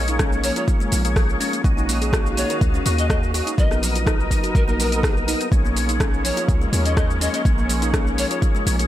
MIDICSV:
0, 0, Header, 1, 7, 480
1, 0, Start_track
1, 0, Tempo, 483871
1, 1634, Time_signature, 4, 2, 24, 8
1, 8800, End_track
2, 0, Start_track
2, 0, Title_t, "Pan flute"
2, 0, Program_c, 0, 75
2, 435, Note_on_c, 0, 73, 91
2, 515, Note_off_c, 0, 73, 0
2, 560, Note_on_c, 0, 73, 77
2, 633, Note_off_c, 0, 73, 0
2, 2355, Note_on_c, 0, 73, 94
2, 2534, Note_off_c, 0, 73, 0
2, 2961, Note_on_c, 0, 75, 92
2, 3034, Note_off_c, 0, 75, 0
2, 3074, Note_on_c, 0, 75, 82
2, 3154, Note_off_c, 0, 75, 0
2, 3557, Note_on_c, 0, 75, 92
2, 3734, Note_off_c, 0, 75, 0
2, 4515, Note_on_c, 0, 70, 91
2, 4595, Note_off_c, 0, 70, 0
2, 4641, Note_on_c, 0, 70, 74
2, 4714, Note_off_c, 0, 70, 0
2, 4754, Note_on_c, 0, 70, 97
2, 5119, Note_off_c, 0, 70, 0
2, 6194, Note_on_c, 0, 73, 92
2, 6373, Note_off_c, 0, 73, 0
2, 6797, Note_on_c, 0, 75, 94
2, 6871, Note_off_c, 0, 75, 0
2, 6917, Note_on_c, 0, 75, 82
2, 6995, Note_off_c, 0, 75, 0
2, 7156, Note_on_c, 0, 75, 91
2, 7235, Note_off_c, 0, 75, 0
2, 7281, Note_on_c, 0, 75, 81
2, 7354, Note_off_c, 0, 75, 0
2, 8116, Note_on_c, 0, 73, 95
2, 8195, Note_off_c, 0, 73, 0
2, 8242, Note_on_c, 0, 73, 77
2, 8314, Note_off_c, 0, 73, 0
2, 8800, End_track
3, 0, Start_track
3, 0, Title_t, "Tonewheel organ"
3, 0, Program_c, 1, 16
3, 0, Note_on_c, 1, 58, 91
3, 0, Note_on_c, 1, 68, 86
3, 0, Note_on_c, 1, 73, 99
3, 1010, Note_off_c, 1, 58, 0
3, 1011, Note_off_c, 1, 68, 0
3, 1011, Note_off_c, 1, 73, 0
3, 1038, Note_on_c, 1, 58, 102
3, 1038, Note_on_c, 1, 73, 110
3, 1039, Note_on_c, 1, 68, 89
3, 1606, Note_off_c, 1, 58, 0
3, 1606, Note_off_c, 1, 68, 0
3, 1606, Note_off_c, 1, 73, 0
3, 1634, Note_on_c, 1, 61, 81
3, 1635, Note_on_c, 1, 66, 74
3, 1635, Note_on_c, 1, 75, 91
3, 2807, Note_off_c, 1, 61, 0
3, 2807, Note_off_c, 1, 66, 0
3, 2807, Note_off_c, 1, 75, 0
3, 2834, Note_on_c, 1, 61, 98
3, 2834, Note_on_c, 1, 75, 103
3, 2835, Note_on_c, 1, 66, 88
3, 3286, Note_off_c, 1, 75, 0
3, 3287, Note_off_c, 1, 61, 0
3, 3287, Note_off_c, 1, 66, 0
3, 3313, Note_on_c, 1, 66, 74
3, 3314, Note_on_c, 1, 61, 85
3, 3315, Note_on_c, 1, 75, 94
3, 3519, Note_off_c, 1, 66, 0
3, 3520, Note_off_c, 1, 61, 0
3, 3520, Note_off_c, 1, 75, 0
3, 3553, Note_on_c, 1, 59, 92
3, 3553, Note_on_c, 1, 70, 84
3, 3553, Note_on_c, 1, 75, 98
3, 4849, Note_off_c, 1, 59, 0
3, 4849, Note_off_c, 1, 70, 0
3, 4849, Note_off_c, 1, 75, 0
3, 4879, Note_on_c, 1, 75, 112
3, 4880, Note_on_c, 1, 59, 102
3, 4880, Note_on_c, 1, 70, 92
3, 5447, Note_off_c, 1, 59, 0
3, 5447, Note_off_c, 1, 70, 0
3, 5447, Note_off_c, 1, 75, 0
3, 5475, Note_on_c, 1, 58, 80
3, 5476, Note_on_c, 1, 68, 73
3, 5476, Note_on_c, 1, 73, 88
3, 6647, Note_off_c, 1, 58, 0
3, 6647, Note_off_c, 1, 68, 0
3, 6648, Note_off_c, 1, 73, 0
3, 6674, Note_on_c, 1, 58, 96
3, 6674, Note_on_c, 1, 68, 88
3, 6675, Note_on_c, 1, 73, 107
3, 7127, Note_off_c, 1, 58, 0
3, 7127, Note_off_c, 1, 68, 0
3, 7127, Note_off_c, 1, 73, 0
3, 7157, Note_on_c, 1, 68, 77
3, 7158, Note_on_c, 1, 58, 83
3, 7158, Note_on_c, 1, 73, 94
3, 7361, Note_off_c, 1, 68, 0
3, 7362, Note_off_c, 1, 58, 0
3, 7362, Note_off_c, 1, 73, 0
3, 7397, Note_on_c, 1, 68, 82
3, 7397, Note_on_c, 1, 73, 99
3, 7398, Note_on_c, 1, 58, 91
3, 8691, Note_off_c, 1, 58, 0
3, 8691, Note_off_c, 1, 68, 0
3, 8691, Note_off_c, 1, 73, 0
3, 8720, Note_on_c, 1, 68, 91
3, 8720, Note_on_c, 1, 73, 108
3, 8721, Note_on_c, 1, 58, 102
3, 8800, Note_off_c, 1, 58, 0
3, 8800, Note_off_c, 1, 68, 0
3, 8800, Note_off_c, 1, 73, 0
3, 8800, End_track
4, 0, Start_track
4, 0, Title_t, "String section"
4, 0, Program_c, 2, 48
4, 0, Note_on_c, 2, 56, 82
4, 0, Note_on_c, 2, 58, 73
4, 0, Note_on_c, 2, 61, 87
4, 1594, Note_off_c, 2, 56, 0
4, 1594, Note_off_c, 2, 61, 0
4, 1629, Note_on_c, 2, 51, 82
4, 1629, Note_on_c, 2, 77, 75
4, 1632, Note_on_c, 2, 66, 89
4, 3513, Note_off_c, 2, 58, 0
4, 3532, Note_off_c, 2, 77, 0
4, 3533, Note_off_c, 2, 51, 0
4, 3534, Note_off_c, 2, 66, 0
4, 3557, Note_on_c, 2, 70, 85
4, 3559, Note_on_c, 2, 63, 90
4, 5456, Note_off_c, 2, 70, 0
4, 5458, Note_off_c, 2, 63, 0
4, 5470, Note_on_c, 2, 56, 81
4, 5472, Note_on_c, 2, 58, 72
4, 5472, Note_on_c, 2, 61, 91
4, 8800, Note_off_c, 2, 56, 0
4, 8800, Note_off_c, 2, 58, 0
4, 8800, Note_off_c, 2, 61, 0
4, 8800, End_track
5, 0, Start_track
5, 0, Title_t, "Kalimba"
5, 0, Program_c, 3, 108
5, 84, Note_on_c, 3, 63, 81
5, 191, Note_off_c, 3, 63, 0
5, 195, Note_on_c, 3, 61, 102
5, 307, Note_off_c, 3, 61, 0
5, 436, Note_on_c, 3, 53, 77
5, 548, Note_off_c, 3, 53, 0
5, 560, Note_on_c, 3, 65, 104
5, 622, Note_off_c, 3, 65, 0
5, 797, Note_on_c, 3, 56, 105
5, 860, Note_off_c, 3, 56, 0
5, 910, Note_on_c, 3, 53, 78
5, 980, Note_off_c, 3, 53, 0
5, 1393, Note_on_c, 3, 61, 99
5, 1513, Note_off_c, 3, 61, 0
5, 1517, Note_on_c, 3, 58, 77
5, 1622, Note_off_c, 3, 58, 0
5, 1758, Note_on_c, 3, 63, 79
5, 1862, Note_off_c, 3, 63, 0
5, 1873, Note_on_c, 3, 58, 81
5, 1941, Note_off_c, 3, 58, 0
5, 1998, Note_on_c, 3, 68, 81
5, 2108, Note_off_c, 3, 68, 0
5, 2114, Note_on_c, 3, 66, 102
5, 2227, Note_off_c, 3, 66, 0
5, 2354, Note_on_c, 3, 58, 77
5, 2467, Note_off_c, 3, 58, 0
5, 2481, Note_on_c, 3, 70, 107
5, 2542, Note_off_c, 3, 70, 0
5, 2719, Note_on_c, 3, 61, 107
5, 2781, Note_off_c, 3, 61, 0
5, 2834, Note_on_c, 3, 58, 80
5, 2902, Note_off_c, 3, 58, 0
5, 3314, Note_on_c, 3, 66, 101
5, 3433, Note_off_c, 3, 66, 0
5, 3439, Note_on_c, 3, 63, 79
5, 3543, Note_off_c, 3, 63, 0
5, 3680, Note_on_c, 3, 59, 78
5, 3783, Note_off_c, 3, 59, 0
5, 3796, Note_on_c, 3, 54, 80
5, 3863, Note_off_c, 3, 54, 0
5, 3921, Note_on_c, 3, 65, 82
5, 4029, Note_off_c, 3, 65, 0
5, 4036, Note_on_c, 3, 63, 100
5, 4148, Note_off_c, 3, 63, 0
5, 4275, Note_on_c, 3, 54, 79
5, 4387, Note_off_c, 3, 54, 0
5, 4399, Note_on_c, 3, 66, 101
5, 4461, Note_off_c, 3, 66, 0
5, 4640, Note_on_c, 3, 58, 102
5, 4702, Note_off_c, 3, 58, 0
5, 4757, Note_on_c, 3, 54, 78
5, 4823, Note_off_c, 3, 54, 0
5, 5236, Note_on_c, 3, 63, 96
5, 5354, Note_off_c, 3, 63, 0
5, 5361, Note_on_c, 3, 59, 81
5, 5464, Note_off_c, 3, 59, 0
5, 5602, Note_on_c, 3, 58, 80
5, 5704, Note_off_c, 3, 58, 0
5, 5716, Note_on_c, 3, 53, 77
5, 5783, Note_off_c, 3, 53, 0
5, 5841, Note_on_c, 3, 63, 78
5, 5950, Note_off_c, 3, 63, 0
5, 5955, Note_on_c, 3, 61, 99
5, 6067, Note_off_c, 3, 61, 0
5, 6197, Note_on_c, 3, 53, 79
5, 6308, Note_off_c, 3, 53, 0
5, 6319, Note_on_c, 3, 65, 103
5, 6381, Note_off_c, 3, 65, 0
5, 6562, Note_on_c, 3, 56, 100
5, 6623, Note_off_c, 3, 56, 0
5, 6674, Note_on_c, 3, 53, 81
5, 6742, Note_off_c, 3, 53, 0
5, 7155, Note_on_c, 3, 61, 98
5, 7273, Note_off_c, 3, 61, 0
5, 7281, Note_on_c, 3, 58, 80
5, 7383, Note_off_c, 3, 58, 0
5, 7520, Note_on_c, 3, 58, 82
5, 7623, Note_off_c, 3, 58, 0
5, 7636, Note_on_c, 3, 53, 79
5, 7703, Note_off_c, 3, 53, 0
5, 7762, Note_on_c, 3, 63, 82
5, 7870, Note_off_c, 3, 63, 0
5, 7878, Note_on_c, 3, 61, 100
5, 7988, Note_off_c, 3, 61, 0
5, 8118, Note_on_c, 3, 53, 77
5, 8229, Note_off_c, 3, 53, 0
5, 8241, Note_on_c, 3, 65, 100
5, 8302, Note_off_c, 3, 65, 0
5, 8479, Note_on_c, 3, 56, 106
5, 8541, Note_off_c, 3, 56, 0
5, 8596, Note_on_c, 3, 53, 81
5, 8662, Note_off_c, 3, 53, 0
5, 8800, End_track
6, 0, Start_track
6, 0, Title_t, "808-style bass"
6, 0, Program_c, 4, 38
6, 0, Note_on_c, 4, 34, 100
6, 506, Note_off_c, 4, 34, 0
6, 916, Note_on_c, 4, 34, 84
6, 1347, Note_off_c, 4, 34, 0
6, 1630, Note_on_c, 4, 34, 103
6, 2425, Note_off_c, 4, 34, 0
6, 2592, Note_on_c, 4, 37, 105
6, 2773, Note_off_c, 4, 37, 0
6, 2837, Note_on_c, 4, 39, 97
6, 3389, Note_off_c, 4, 39, 0
6, 3553, Note_on_c, 4, 34, 103
6, 4347, Note_off_c, 4, 34, 0
6, 4512, Note_on_c, 4, 34, 89
6, 5306, Note_off_c, 4, 34, 0
6, 5473, Note_on_c, 4, 34, 105
6, 6266, Note_off_c, 4, 34, 0
6, 6432, Note_on_c, 4, 37, 102
6, 6613, Note_off_c, 4, 37, 0
6, 6672, Note_on_c, 4, 39, 95
6, 7226, Note_off_c, 4, 39, 0
6, 7392, Note_on_c, 4, 34, 101
6, 8186, Note_off_c, 4, 34, 0
6, 8597, Note_on_c, 4, 34, 82
6, 8800, Note_off_c, 4, 34, 0
6, 8800, End_track
7, 0, Start_track
7, 0, Title_t, "Drums"
7, 78, Note_on_c, 9, 42, 56
7, 83, Note_on_c, 9, 82, 43
7, 177, Note_off_c, 9, 42, 0
7, 182, Note_off_c, 9, 82, 0
7, 192, Note_on_c, 9, 37, 116
7, 192, Note_on_c, 9, 42, 47
7, 193, Note_on_c, 9, 36, 125
7, 197, Note_on_c, 9, 82, 57
7, 291, Note_off_c, 9, 37, 0
7, 291, Note_off_c, 9, 42, 0
7, 292, Note_off_c, 9, 36, 0
7, 296, Note_off_c, 9, 82, 0
7, 322, Note_on_c, 9, 82, 27
7, 422, Note_off_c, 9, 82, 0
7, 432, Note_on_c, 9, 46, 99
7, 438, Note_on_c, 9, 82, 98
7, 531, Note_off_c, 9, 46, 0
7, 537, Note_off_c, 9, 82, 0
7, 558, Note_on_c, 9, 42, 55
7, 563, Note_on_c, 9, 82, 42
7, 657, Note_off_c, 9, 42, 0
7, 662, Note_off_c, 9, 82, 0
7, 672, Note_on_c, 9, 36, 127
7, 674, Note_on_c, 9, 42, 44
7, 679, Note_on_c, 9, 82, 56
7, 771, Note_off_c, 9, 36, 0
7, 773, Note_off_c, 9, 42, 0
7, 779, Note_off_c, 9, 82, 0
7, 804, Note_on_c, 9, 82, 29
7, 904, Note_off_c, 9, 82, 0
7, 912, Note_on_c, 9, 46, 95
7, 917, Note_on_c, 9, 82, 102
7, 1011, Note_off_c, 9, 46, 0
7, 1017, Note_off_c, 9, 82, 0
7, 1039, Note_on_c, 9, 42, 56
7, 1045, Note_on_c, 9, 82, 43
7, 1139, Note_off_c, 9, 42, 0
7, 1144, Note_off_c, 9, 82, 0
7, 1151, Note_on_c, 9, 36, 127
7, 1155, Note_on_c, 9, 37, 107
7, 1155, Note_on_c, 9, 46, 51
7, 1160, Note_on_c, 9, 82, 54
7, 1250, Note_off_c, 9, 36, 0
7, 1254, Note_off_c, 9, 37, 0
7, 1254, Note_off_c, 9, 46, 0
7, 1259, Note_off_c, 9, 82, 0
7, 1286, Note_on_c, 9, 82, 28
7, 1385, Note_off_c, 9, 82, 0
7, 1396, Note_on_c, 9, 46, 93
7, 1401, Note_on_c, 9, 82, 100
7, 1495, Note_off_c, 9, 46, 0
7, 1500, Note_off_c, 9, 82, 0
7, 1521, Note_on_c, 9, 42, 55
7, 1527, Note_on_c, 9, 82, 41
7, 1620, Note_off_c, 9, 42, 0
7, 1626, Note_off_c, 9, 82, 0
7, 1631, Note_on_c, 9, 36, 127
7, 1636, Note_on_c, 9, 42, 43
7, 1641, Note_on_c, 9, 82, 57
7, 1730, Note_off_c, 9, 36, 0
7, 1735, Note_off_c, 9, 42, 0
7, 1741, Note_off_c, 9, 82, 0
7, 1766, Note_on_c, 9, 82, 29
7, 1866, Note_off_c, 9, 82, 0
7, 1874, Note_on_c, 9, 46, 90
7, 1880, Note_on_c, 9, 82, 98
7, 1974, Note_off_c, 9, 46, 0
7, 1979, Note_off_c, 9, 82, 0
7, 2001, Note_on_c, 9, 42, 55
7, 2007, Note_on_c, 9, 82, 42
7, 2100, Note_off_c, 9, 42, 0
7, 2106, Note_off_c, 9, 82, 0
7, 2111, Note_on_c, 9, 36, 122
7, 2117, Note_on_c, 9, 37, 120
7, 2117, Note_on_c, 9, 42, 46
7, 2122, Note_on_c, 9, 82, 60
7, 2210, Note_off_c, 9, 36, 0
7, 2216, Note_off_c, 9, 37, 0
7, 2216, Note_off_c, 9, 42, 0
7, 2222, Note_off_c, 9, 82, 0
7, 2246, Note_on_c, 9, 82, 28
7, 2345, Note_off_c, 9, 82, 0
7, 2355, Note_on_c, 9, 46, 92
7, 2360, Note_on_c, 9, 82, 104
7, 2454, Note_off_c, 9, 46, 0
7, 2459, Note_off_c, 9, 82, 0
7, 2480, Note_on_c, 9, 42, 55
7, 2485, Note_on_c, 9, 82, 43
7, 2579, Note_off_c, 9, 42, 0
7, 2585, Note_off_c, 9, 82, 0
7, 2592, Note_on_c, 9, 36, 127
7, 2593, Note_on_c, 9, 42, 44
7, 2599, Note_on_c, 9, 82, 57
7, 2691, Note_off_c, 9, 36, 0
7, 2692, Note_off_c, 9, 42, 0
7, 2698, Note_off_c, 9, 82, 0
7, 2726, Note_on_c, 9, 82, 29
7, 2825, Note_off_c, 9, 82, 0
7, 2834, Note_on_c, 9, 46, 92
7, 2839, Note_on_c, 9, 82, 104
7, 2933, Note_off_c, 9, 46, 0
7, 2939, Note_off_c, 9, 82, 0
7, 2960, Note_on_c, 9, 42, 58
7, 2966, Note_on_c, 9, 82, 43
7, 3060, Note_off_c, 9, 42, 0
7, 3065, Note_off_c, 9, 82, 0
7, 3073, Note_on_c, 9, 36, 127
7, 3076, Note_on_c, 9, 37, 111
7, 3076, Note_on_c, 9, 42, 43
7, 3082, Note_on_c, 9, 82, 56
7, 3172, Note_off_c, 9, 36, 0
7, 3176, Note_off_c, 9, 37, 0
7, 3176, Note_off_c, 9, 42, 0
7, 3181, Note_off_c, 9, 82, 0
7, 3207, Note_on_c, 9, 82, 28
7, 3306, Note_off_c, 9, 82, 0
7, 3317, Note_on_c, 9, 46, 92
7, 3322, Note_on_c, 9, 82, 98
7, 3416, Note_off_c, 9, 46, 0
7, 3422, Note_off_c, 9, 82, 0
7, 3443, Note_on_c, 9, 42, 55
7, 3449, Note_on_c, 9, 82, 41
7, 3543, Note_off_c, 9, 42, 0
7, 3548, Note_off_c, 9, 82, 0
7, 3553, Note_on_c, 9, 36, 127
7, 3558, Note_on_c, 9, 42, 46
7, 3564, Note_on_c, 9, 82, 57
7, 3652, Note_off_c, 9, 36, 0
7, 3657, Note_off_c, 9, 42, 0
7, 3663, Note_off_c, 9, 82, 0
7, 3684, Note_on_c, 9, 37, 60
7, 3689, Note_on_c, 9, 82, 28
7, 3783, Note_off_c, 9, 37, 0
7, 3788, Note_off_c, 9, 82, 0
7, 3798, Note_on_c, 9, 46, 86
7, 3804, Note_on_c, 9, 82, 100
7, 3897, Note_off_c, 9, 46, 0
7, 3903, Note_off_c, 9, 82, 0
7, 3923, Note_on_c, 9, 42, 56
7, 3929, Note_on_c, 9, 82, 42
7, 4022, Note_off_c, 9, 42, 0
7, 4028, Note_off_c, 9, 82, 0
7, 4033, Note_on_c, 9, 36, 127
7, 4039, Note_on_c, 9, 37, 115
7, 4039, Note_on_c, 9, 42, 47
7, 4044, Note_on_c, 9, 82, 59
7, 4132, Note_off_c, 9, 36, 0
7, 4138, Note_off_c, 9, 37, 0
7, 4138, Note_off_c, 9, 42, 0
7, 4143, Note_off_c, 9, 82, 0
7, 4168, Note_on_c, 9, 82, 28
7, 4267, Note_off_c, 9, 82, 0
7, 4273, Note_on_c, 9, 36, 63
7, 4277, Note_on_c, 9, 46, 90
7, 4283, Note_on_c, 9, 82, 102
7, 4373, Note_off_c, 9, 36, 0
7, 4376, Note_off_c, 9, 46, 0
7, 4382, Note_off_c, 9, 82, 0
7, 4403, Note_on_c, 9, 42, 56
7, 4409, Note_on_c, 9, 82, 42
7, 4502, Note_off_c, 9, 42, 0
7, 4508, Note_off_c, 9, 82, 0
7, 4513, Note_on_c, 9, 36, 127
7, 4518, Note_on_c, 9, 42, 44
7, 4523, Note_on_c, 9, 82, 58
7, 4612, Note_off_c, 9, 36, 0
7, 4617, Note_off_c, 9, 42, 0
7, 4623, Note_off_c, 9, 82, 0
7, 4648, Note_on_c, 9, 82, 28
7, 4747, Note_off_c, 9, 82, 0
7, 4759, Note_on_c, 9, 46, 87
7, 4764, Note_on_c, 9, 82, 97
7, 4858, Note_off_c, 9, 46, 0
7, 4863, Note_off_c, 9, 82, 0
7, 4883, Note_on_c, 9, 42, 58
7, 4889, Note_on_c, 9, 82, 44
7, 4982, Note_off_c, 9, 42, 0
7, 4988, Note_off_c, 9, 82, 0
7, 4993, Note_on_c, 9, 36, 127
7, 4999, Note_on_c, 9, 37, 105
7, 4999, Note_on_c, 9, 46, 50
7, 5004, Note_on_c, 9, 82, 55
7, 5092, Note_off_c, 9, 36, 0
7, 5098, Note_off_c, 9, 37, 0
7, 5098, Note_off_c, 9, 46, 0
7, 5104, Note_off_c, 9, 82, 0
7, 5130, Note_on_c, 9, 82, 28
7, 5229, Note_off_c, 9, 82, 0
7, 5237, Note_on_c, 9, 46, 91
7, 5243, Note_on_c, 9, 82, 99
7, 5337, Note_off_c, 9, 46, 0
7, 5342, Note_off_c, 9, 82, 0
7, 5363, Note_on_c, 9, 42, 55
7, 5369, Note_on_c, 9, 82, 42
7, 5462, Note_off_c, 9, 42, 0
7, 5468, Note_off_c, 9, 82, 0
7, 5473, Note_on_c, 9, 36, 127
7, 5481, Note_on_c, 9, 42, 47
7, 5486, Note_on_c, 9, 82, 52
7, 5572, Note_off_c, 9, 36, 0
7, 5580, Note_off_c, 9, 42, 0
7, 5585, Note_off_c, 9, 82, 0
7, 5610, Note_on_c, 9, 82, 27
7, 5709, Note_off_c, 9, 82, 0
7, 5719, Note_on_c, 9, 46, 90
7, 5725, Note_on_c, 9, 82, 96
7, 5818, Note_off_c, 9, 46, 0
7, 5824, Note_off_c, 9, 82, 0
7, 5842, Note_on_c, 9, 42, 59
7, 5848, Note_on_c, 9, 82, 40
7, 5941, Note_off_c, 9, 42, 0
7, 5947, Note_off_c, 9, 82, 0
7, 5953, Note_on_c, 9, 36, 120
7, 5957, Note_on_c, 9, 37, 109
7, 5957, Note_on_c, 9, 42, 49
7, 5963, Note_on_c, 9, 82, 58
7, 6053, Note_off_c, 9, 36, 0
7, 6057, Note_off_c, 9, 37, 0
7, 6057, Note_off_c, 9, 42, 0
7, 6062, Note_off_c, 9, 82, 0
7, 6088, Note_on_c, 9, 82, 25
7, 6187, Note_off_c, 9, 82, 0
7, 6198, Note_on_c, 9, 46, 92
7, 6203, Note_on_c, 9, 82, 95
7, 6297, Note_off_c, 9, 46, 0
7, 6302, Note_off_c, 9, 82, 0
7, 6322, Note_on_c, 9, 42, 60
7, 6327, Note_on_c, 9, 82, 41
7, 6421, Note_off_c, 9, 42, 0
7, 6426, Note_off_c, 9, 82, 0
7, 6433, Note_on_c, 9, 36, 127
7, 6436, Note_on_c, 9, 42, 47
7, 6442, Note_on_c, 9, 82, 53
7, 6532, Note_off_c, 9, 36, 0
7, 6536, Note_off_c, 9, 42, 0
7, 6541, Note_off_c, 9, 82, 0
7, 6566, Note_on_c, 9, 82, 28
7, 6665, Note_off_c, 9, 82, 0
7, 6675, Note_on_c, 9, 46, 92
7, 6681, Note_on_c, 9, 82, 93
7, 6774, Note_off_c, 9, 46, 0
7, 6780, Note_off_c, 9, 82, 0
7, 6800, Note_on_c, 9, 42, 60
7, 6806, Note_on_c, 9, 82, 43
7, 6899, Note_off_c, 9, 42, 0
7, 6905, Note_off_c, 9, 82, 0
7, 6913, Note_on_c, 9, 36, 122
7, 6915, Note_on_c, 9, 37, 100
7, 6915, Note_on_c, 9, 42, 45
7, 6920, Note_on_c, 9, 82, 54
7, 7012, Note_off_c, 9, 36, 0
7, 7014, Note_off_c, 9, 37, 0
7, 7014, Note_off_c, 9, 42, 0
7, 7019, Note_off_c, 9, 82, 0
7, 7047, Note_on_c, 9, 82, 27
7, 7147, Note_off_c, 9, 82, 0
7, 7155, Note_on_c, 9, 46, 93
7, 7161, Note_on_c, 9, 82, 94
7, 7255, Note_off_c, 9, 46, 0
7, 7260, Note_off_c, 9, 82, 0
7, 7280, Note_on_c, 9, 42, 58
7, 7286, Note_on_c, 9, 82, 42
7, 7379, Note_off_c, 9, 42, 0
7, 7385, Note_off_c, 9, 82, 0
7, 7392, Note_on_c, 9, 36, 121
7, 7395, Note_on_c, 9, 42, 50
7, 7401, Note_on_c, 9, 82, 53
7, 7491, Note_off_c, 9, 36, 0
7, 7494, Note_off_c, 9, 42, 0
7, 7500, Note_off_c, 9, 82, 0
7, 7526, Note_on_c, 9, 82, 27
7, 7625, Note_off_c, 9, 82, 0
7, 7633, Note_on_c, 9, 46, 92
7, 7638, Note_on_c, 9, 82, 92
7, 7732, Note_off_c, 9, 46, 0
7, 7738, Note_off_c, 9, 82, 0
7, 7759, Note_on_c, 9, 42, 61
7, 7764, Note_on_c, 9, 82, 39
7, 7858, Note_off_c, 9, 42, 0
7, 7863, Note_off_c, 9, 82, 0
7, 7873, Note_on_c, 9, 36, 119
7, 7874, Note_on_c, 9, 37, 106
7, 7874, Note_on_c, 9, 42, 50
7, 7880, Note_on_c, 9, 82, 54
7, 7972, Note_off_c, 9, 36, 0
7, 7973, Note_off_c, 9, 37, 0
7, 7973, Note_off_c, 9, 42, 0
7, 7979, Note_off_c, 9, 82, 0
7, 8007, Note_on_c, 9, 82, 26
7, 8106, Note_off_c, 9, 82, 0
7, 8116, Note_on_c, 9, 46, 95
7, 8121, Note_on_c, 9, 82, 98
7, 8215, Note_off_c, 9, 46, 0
7, 8221, Note_off_c, 9, 82, 0
7, 8242, Note_on_c, 9, 42, 59
7, 8247, Note_on_c, 9, 82, 39
7, 8341, Note_off_c, 9, 42, 0
7, 8346, Note_off_c, 9, 82, 0
7, 8354, Note_on_c, 9, 36, 124
7, 8355, Note_on_c, 9, 42, 48
7, 8361, Note_on_c, 9, 82, 52
7, 8453, Note_off_c, 9, 36, 0
7, 8455, Note_off_c, 9, 42, 0
7, 8460, Note_off_c, 9, 82, 0
7, 8488, Note_on_c, 9, 82, 26
7, 8587, Note_off_c, 9, 82, 0
7, 8598, Note_on_c, 9, 46, 90
7, 8603, Note_on_c, 9, 82, 92
7, 8697, Note_off_c, 9, 46, 0
7, 8703, Note_off_c, 9, 82, 0
7, 8724, Note_on_c, 9, 42, 61
7, 8729, Note_on_c, 9, 82, 41
7, 8800, Note_off_c, 9, 42, 0
7, 8800, Note_off_c, 9, 82, 0
7, 8800, End_track
0, 0, End_of_file